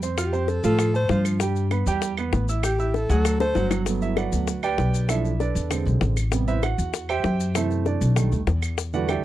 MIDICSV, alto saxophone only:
0, 0, Header, 1, 2, 480
1, 0, Start_track
1, 0, Key_signature, 1, "major"
1, 0, Tempo, 307220
1, 277, Time_signature, 4, 2, 24, 8
1, 14444, End_track
2, 0, Start_track
2, 0, Title_t, "Alto saxophone"
2, 0, Program_c, 0, 65
2, 306, Note_on_c, 0, 67, 80
2, 776, Note_on_c, 0, 69, 90
2, 800, Note_off_c, 0, 67, 0
2, 1006, Note_off_c, 0, 69, 0
2, 1018, Note_on_c, 0, 69, 108
2, 1454, Note_off_c, 0, 69, 0
2, 1497, Note_on_c, 0, 72, 98
2, 1934, Note_off_c, 0, 72, 0
2, 4136, Note_on_c, 0, 67, 81
2, 4610, Note_on_c, 0, 69, 89
2, 4633, Note_off_c, 0, 67, 0
2, 4842, Note_off_c, 0, 69, 0
2, 4857, Note_on_c, 0, 69, 96
2, 5293, Note_off_c, 0, 69, 0
2, 5324, Note_on_c, 0, 72, 109
2, 5766, Note_off_c, 0, 72, 0
2, 14444, End_track
0, 0, End_of_file